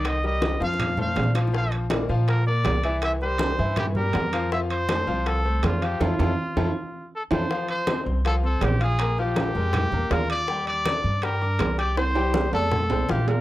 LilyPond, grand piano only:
\new Staff \with { instrumentName = "Grand piano" } { \time 4/4 \key f \major \tempo 4 = 161 <ees ees' ees''>8 <g g' bes'>4 <f f' f''>4 <a a' c''>4 <f f' f''>8 | <f f' f''>4 <bes bes' d''>8 <f f' f''>4 <bes bes' d''>4 <e e' e''>8~ | <e e' e''>8 <g g' bes'>4 <e e' e''>4 <g g' bes'>4 <f f' f''>8 | <f f' f''>4 <a a' c''>8 <f f' f''>4 <a a' c''>4 <f f' f''>8 |
<e' f' a'>8 <e' f' a'>8 r8 <e' f' a'>8 r4. <e' f' a'>8 | <f f' f''>4 <c' c'' c'''>4 <f f' f''>8 <c' c'' c'''>4 <f' f'' f'''>8 | <bes bes' bes''>8 <f f' f''>4 <aes bes' g''>4 <bes bes' bes''>8 <f' f'' f'''>4 | <g g' g''>4 <d' d'' d'''>4 <g g' g''>8 <d' d'' d'''>4 <g' g'' g'''>8 |
<c' c'' c'''>8 <g g' g''>4 <a a' a''>4 <c' c'' c'''>8 <f' f'' f'''>4 | }